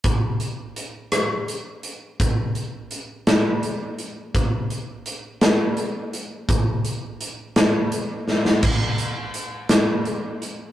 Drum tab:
CC |------------|------------|------------|------------|
HH |x-x-x-x-x-x-|x-x-x-x-x-x-|x-x-x-x-x-x-|x-x-x-x-x---|
SD |------r-----|------o-----|------o-----|------o---oo|
BD |o-----------|o-----------|o-----------|o-----------|

CC |x-----------|
HH |--x-x-x-x-x-|
SD |------o-----|
BD |o-----------|